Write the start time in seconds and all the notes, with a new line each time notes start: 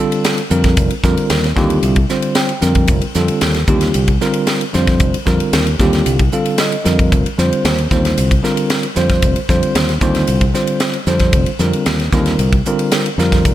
Already playing: D3 G3 C4
0.00 F4 A4
0.12 ride
0.25 snare, hi-hat pedal, ride
0.38 ride
0.50 F2 D3 G3 C4 F4 A#4, hi-hat pedal
0.64 kick, snare, ride
0.77 F1, kick, hi-hat pedal, ride
0.91 ride
1.04 F2 D3 G3 C4 F4 A#4, kick, snare, hi-hat pedal
1.17 muted fingered electric bass stroke, ride
1.30 D#2, snare, hi-hat pedal, ride
1.44 snare, ride
1.56 D#2 D3 G3 C4 F4 G4, kick, snare, hi-hat pedal
1.70 ride
1.83 C2, hi-hat pedal, ride
1.96 kick, ride
2.09 D3 G3 C4 F4 C5, snare, hi-hat pedal
2.22 ride
2.35 G5, snare, hi-hat pedal, ride
2.49 ride
2.61 F2 D3 G3 C4 F4 A#4, snare, hi-hat pedal
2.75 kick, ride
2.88 F1, kick, hi-hat pedal, ride
3.02 ride
3.15 F2 D3 G3 C4 F4 A4, snare, hi-hat pedal
3.28 muted fingered electric bass stroke, ride
3.41 D#2, snare, hi-hat pedal, ride
3.54 snare, ride
3.67 D#2 D3 G3 C4 F4 G4, kick, hi-hat pedal
3.81 snare, ride
3.94 C2, hi-hat pedal, ride
4.08 kick, ride
4.21 D3 G3 C4 F4 A#4, snare, hi-hat pedal
4.34 ride
4.47 snare, hi-hat pedal, ride
4.61 ride
4.74 F2 D3 G3 C4 F4 C5, snare, hi-hat pedal
4.87 kick, snare, ride
5.00 F1, kick, hi-hat pedal, ride
5.14 ride
5.26 F2 D3 G3 C4 F4 A#4, kick, snare, hi-hat pedal
5.40 muted fingered electric bass stroke, ride
5.53 D#2, snare, hi-hat pedal, ride
5.67 ride
5.79 D#2 D3 G3 C4 F4 G4, kick, snare, hi-hat pedal
5.93 snare, ride
6.06 C2, hi-hat pedal, ride
6.19 kick, ride
6.32 D3 G3 C4 F4 A4 F5, hi-hat pedal
6.46 ride
6.58 D#5, snare, hi-hat pedal, ride
6.72 ride
6.85 F2 D3 G3 C4 F4 A#4, snare, hi-hat pedal
6.99 kick, ride
7.12 F1, kick, hi-hat pedal, ride
7.26 ride
7.38 F2 D3 G3 C4 F4 C5, snare, hi-hat pedal
7.52 muted fingered electric bass stroke, ride
7.65 D#2, snare, hi-hat pedal, ride
7.78 ride
7.91 D#2 D3 G3 C4 F4 C5, kick, snare, hi-hat pedal
8.05 snare, ride
8.18 C2, hi-hat pedal, ride
8.31 kick, ride
8.43 D3 G3 C4 F4 A#4, snare, hi-hat pedal
8.57 ride
8.70 snare, hi-hat pedal, ride
8.83 ride
8.96 F2 D3 G3 C4 F4 C5, snare, hi-hat pedal
9.09 kick, snare, ride
9.22 F1, kick, hi-hat pedal, ride
9.36 ride
9.49 F2 D3 G3 C4 F4 C5, kick, snare, hi-hat pedal
9.63 muted fingered electric bass stroke, ride
9.75 D#2, snare, hi-hat pedal, ride
9.89 snare, ride
10.01 D#2 D3 G3 C4 F4 C5, kick, snare, hi-hat pedal
10.15 snare, ride
10.27 C2, hi-hat pedal, ride
10.41 kick, ride
10.54 D3 G3 C4 F4 C5, snare, hi-hat pedal
10.67 ride
10.80 snare, hi-hat pedal, ride
10.94 ride
11.07 F2 D3 G3 C4 F4 C5, snare, hi-hat pedal
11.19 kick, snare, ride
11.33 F1, kick, hi-hat pedal, ride
11.46 ride
11.59 F2 D3 G3 C4 F4 A#4, snare, hi-hat pedal
11.73 muted fingered electric bass stroke, ride
11.86 D#2, snare, hi-hat pedal, ride
12.00 snare, ride
12.12 D#2 D3 G3 C4 F4 A#4, kick, snare, hi-hat pedal
12.26 snare, ride
12.39 C2, hi-hat pedal, ride
12.53 kick, ride
12.66 D3 G3 C4 F4 A#4, hi-hat pedal
12.79 ride
12.92 snare, hi-hat pedal, ride
13.06 ride
13.18 F2 D3 G3 C4 F4 A#4, snare, hi-hat pedal
13.32 kick, snare, ride
13.45 F1, kick, hi-hat pedal, ride